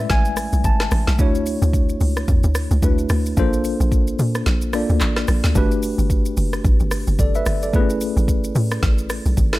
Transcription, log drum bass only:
0.10 A1
0.53 B1
0.64 G#1
0.92 A1
1.08 B1
1.19 D2
1.62 D2
2.01 C#2
2.28 E2
2.44 D2
2.71 C#2
2.82 D2
3.10 D2
3.37 A#1
3.80 A#1
4.19 A#2
4.46 A#1
4.90 D2
5.01 A1
5.28 A#1
5.44 D2
5.55 G1
5.98 G1
6.37 F#1
6.64 A1
6.80 G1
7.07 F#1
7.19 G1
7.46 G1
7.74 A1
8.17 A1
8.55 A2
8.83 A1
9.26 B1
9.37 G#1

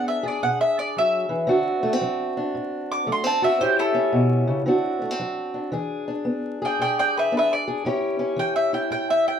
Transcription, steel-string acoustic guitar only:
Already playing: B3 D4 G#4
0.23 G#4
0.43 B2
0.96 F#3
1.29 E3
1.47 D3 C4 D4 F#4
1.83 A3
1.93 C4
2.01 F#3
2.37 D4
2.55 A2
3.07 F#3 A3
3.24 C4
3.42 F#4
3.60 A2 C#4 E4 G4
3.94 C#4
4.12 B2
4.47 C#3
4.66 D3 C4 D4 F#4
5.02 A3
5.11 C4
5.20 F#3
5.54 D4
5.72 E3 D4 G#4
6.08 D4
6.25 B3
6.62 G#4
6.79 B2
7.32 B3 D4
7.68 G#4
7.85 A2 C#4 E4 G4
8.19 C#4
8.36 E3
8.73 E4
8.91 A2

